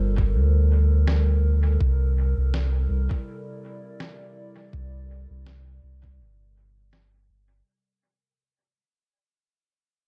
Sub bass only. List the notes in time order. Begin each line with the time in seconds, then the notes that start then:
Already playing: G1
0.34 D2
1.80 C2
2.37 C2
2.90 C2
4.73 C2
5.30 C2
5.83 C2
6.19 G1
7.29 G1